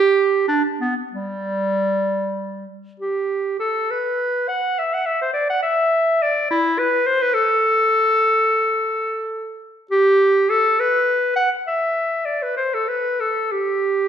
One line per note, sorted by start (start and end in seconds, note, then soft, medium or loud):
0.00 0.48 G4 medium
0.48 0.62 D4 medium
0.81 0.95 B3 medium
1.13 2.66 G3 medium
3.00 3.57 G4 medium
3.59 3.92 A4 medium
3.91 4.50 B4 medium
4.48 4.81 F#5 medium
4.79 4.95 E5 medium
4.94 5.08 F#5 medium
5.06 5.21 E5 medium
5.21 5.33 C5 medium
5.33 5.49 D5 medium
5.49 5.62 F#5 medium
5.63 6.24 E5 medium
6.22 6.50 D5 medium
6.51 6.80 E4 medium
6.79 7.08 B4 medium
7.07 7.24 C5 medium
7.22 7.35 B4 medium
7.34 9.61 A4 medium
9.91 10.51 G4 medium
10.49 10.81 A4 medium
10.80 11.35 B4 medium
11.36 11.50 F#5 medium
11.67 12.27 E5 medium
12.25 12.44 D5 medium
12.43 12.56 B4 medium
12.57 12.76 C5 medium
12.74 12.90 A4 medium
12.88 13.22 B4 medium
13.20 13.53 A4 medium
13.52 14.08 G4 medium